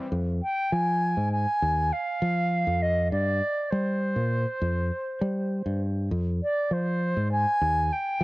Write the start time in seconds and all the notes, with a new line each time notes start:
0.12 F2
0.43 G5
0.72 F3 G#5
1.17 G#2
1.32 G#5
1.62 D#2
1.93 F5
2.22 F3
2.67 F2
2.82 D#5
3.11 G2 D5
3.70 G3 C5
4.16 A#2
4.62 F2
5.21 G3
5.66 G2
6.11 F2
6.43 D5
6.71 F3 C5
7.17 G#2
7.32 G#5
7.61 D#2
7.92 G5
8.21 F3